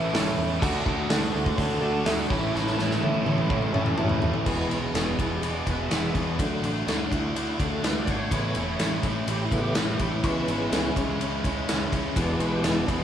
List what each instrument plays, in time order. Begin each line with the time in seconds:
Already playing: overdriven electric guitar A2 E3 A3 C#4 E4 A4, tonewheel organ C#4 E4 A4, grand piano E5
0.13 picked electric bass A1, overdriven electric guitar A2 E3 A3 C#4 E4 A4, grand piano E4 A4 C#5 A5, snare, open hi-hat
0.37 picked electric bass E2, overdriven electric guitar A3 C#4 E4, grand piano E4 A4 C#5
0.61 picked electric bass D2, overdriven electric guitar D3 A3 D4 F#4 A4, tonewheel organ D4 F#4 A4, grand piano F#4 A4 D5, kick, crash
0.85 picked electric bass D2, overdriven electric guitar A3 D4 F#4 A4, grand piano F#4 A4, kick
1.09 picked electric bass D2, overdriven electric guitar D3 A3 D4 F#4 A4, grand piano F#4 A4 D5, snare, open hi-hat
1.32 picked electric bass D2, overdriven electric guitar A3 D4 F#4 A4, grand piano F#4 A4 D5
1.46 kick
1.56 picked electric bass D2, overdriven electric guitar D3 A3 D4 F#4, grand piano F#4 A4 C#5, kick, open hi-hat
1.60 overdriven electric guitar A4
1.80 picked electric bass D2, overdriven electric guitar D4 F#4 A4, grand piano F#4 A4 D5
2.05 picked electric bass D2, overdriven electric guitar D3 A3 D4 F#4 A4, grand piano F#4 A4 E5, snare, open hi-hat
2.28 picked electric bass A1, overdriven electric guitar E3 A3 C#4 E4 A4, tonewheel organ C#4, grand piano E4 A4 C#5, kick
2.32 overdriven electric guitar A2 A4, tonewheel organ E4 A4
2.54 picked electric bass A1, overdriven electric guitar A2 E3 A3 C#4 E4 A4, snare
2.67 snare
2.77 picked electric bass A1, overdriven electric guitar A3 C#4 E4 A4, grand piano E4 A4 C#5, snare
2.91 snare
3.01 picked electric bass A1, overdriven electric guitar A2 E3 A3 C#4 E4 A4, grand piano E4 A4 E5, high tom
3.14 high tom
3.24 picked electric bass A1, overdriven electric guitar A2 E3 A3 C#4 E4 A4, grand piano E4 A4 C#5, high tom
3.38 mid tom
3.49 picked electric bass A1, grand piano E4 A4 C#5, kick, mid tom
3.62 mid tom
3.73 picked electric bass A1, overdriven electric guitar A3 C#4 E4 A4, grand piano E4 A4 C#5, mid tom
3.86 mid tom
3.97 picked electric bass A1, overdriven electric guitar A2 E3 A3 C#4 E4 A4, grand piano E4 A4 C#5, mid tom
4.09 floor tom
4.20 picked electric bass A1, overdriven electric guitar A3 C#4 E4, grand piano E4 A4 E5, floor tom
4.34 floor tom
4.46 picked electric bass E1, overdriven electric guitar E2 B2 E3 G#3 B3 G#4, tonewheel organ E3 G#3 B3, kick, crash
4.69 picked electric bass B1, overdriven electric guitar E2 B2 E3 G#3 B3 G#4, ride
4.93 picked electric bass E1, overdriven electric guitar E2 B2 E3 G#3 B3 G#4, tonewheel organ A#3, snare, ride
4.98 tonewheel organ B3
5.18 picked electric bass E1, overdriven electric guitar E2 B2 E3 G#3 B3 G#4, tonewheel organ E4, kick, ride
5.33 tonewheel organ G4
5.42 picked electric bass E1, overdriven electric guitar E2 B2 E3 G#3 B3 G#4, tonewheel organ D5, ride
5.66 picked electric bass E1, overdriven electric guitar E2 B2 E3 G#3 B3 G#4, tonewheel organ B4, kick, ride
5.82 tonewheel organ E5
5.89 picked electric bass E1, overdriven electric guitar E2 B2 E3 G#3 B3 G#4, tonewheel organ E5, snare, ride
6.14 overdriven electric guitar E2 B2 E3 G#3 B3 G#4, picked electric bass E2, kick, ride
6.38 picked electric bass D2, overdriven electric guitar D3 A3 D4 F#4, tonewheel organ D3 F#3 A3, kick, ride
6.62 picked electric bass A1, overdriven electric guitar D3 A3 D4 F#4, ride
6.86 picked electric bass D2, overdriven electric guitar D3 A3 D4 F#4, snare, ride
7.11 picked electric bass D2, overdriven electric guitar D3 A3 D4 F#4, tonewheel organ E4, kick, ride
7.35 picked electric bass D2, overdriven electric guitar D3 A3 D4 F#4, ride
7.58 picked electric bass D2, overdriven electric guitar D3 A3 D4 F#4, kick, ride
7.62 tonewheel organ A4
7.83 picked electric bass D2, overdriven electric guitar D3 A3 D4 F#4, tonewheel organ B4, snare, ride
7.99 tonewheel organ D5
8.07 picked electric bass G#1, overdriven electric guitar D3 A3 D4 F#4, tonewheel organ C#5, kick, ride
8.31 picked electric bass A1, overdriven electric guitar A2 E3 A3 C#4 E4, tonewheel organ C#3 A3 B3, kick, ride
8.55 picked electric bass E1, overdriven electric guitar A2 E3 A3 C#4 E4, ride
8.79 picked electric bass A1, overdriven electric guitar A2 E3 A3 C#4 E4, snare, ride
9.03 picked electric bass A1, overdriven electric guitar A2 E3 A3 C#4 E4, kick, ride
9.27 picked electric bass A1, overdriven electric guitar A2 E3 A3 C#4 E4, tonewheel organ G4, ride
9.44 tonewheel organ E4
9.51 picked electric bass A1, overdriven electric guitar A2 E3 A3 C#4 E4, tonewheel organ C#3 A3 B3, kick, ride
9.57 tonewheel organ F#4
9.62 tonewheel organ G4
9.75 picked electric bass A1, overdriven electric guitar A2 E3 A3 C#4 E4, tonewheel organ E4, snare, ride
9.90 tonewheel organ F#4
9.94 tonewheel organ G4
9.99 picked electric bass A1, overdriven electric guitar A2 E3 A3 C#4 E4, kick, ride
10.10 tonewheel organ E4
10.24 picked electric bass C#2, overdriven electric guitar C#3 E3 G#3 C#4 E4, tonewheel organ E3 G#3 B3 C#4, kick, ride
10.48 picked electric bass G#1, overdriven electric guitar C#3 E3 G#3 C#4 E4, ride
10.71 picked electric bass C#2, overdriven electric guitar C#3 E3 G#3 C#4 E4, snare, ride
10.96 picked electric bass C#2, overdriven electric guitar C#3 E3 G#3 C#4 E4, kick, ride
11.20 picked electric bass C#2, overdriven electric guitar C#3 E3 G#3 C#4 E4, ride
11.44 picked electric bass C#2, overdriven electric guitar C#3 E3 G#3 C#4 E4, kick, ride
11.67 picked electric bass C#2, overdriven electric guitar C#3 E3 G#3 C#4 E4, snare, ride
11.91 picked electric bass C#2, overdriven electric guitar C#3 E3 G#3 C#4 E4, kick, ride
12.15 picked electric bass E1, overdriven electric guitar E2 B2 E3 G#3 B3 G#4, tonewheel organ E3 G#3 B3 D5, kick, ride
12.39 picked electric bass B1, overdriven electric guitar E2 B2 E3 G#3 B3 G#4, ride
12.44 tonewheel organ B4
12.54 tonewheel organ G4
12.63 picked electric bass E1, overdriven electric guitar E2 B2 E3 G#3 B3 G#4, snare, ride
12.68 tonewheel organ E4
12.79 tonewheel organ D4
12.88 picked electric bass E1, overdriven electric guitar E2 B2 E3 G#3 B3 G#4, tonewheel organ B3, kick, ride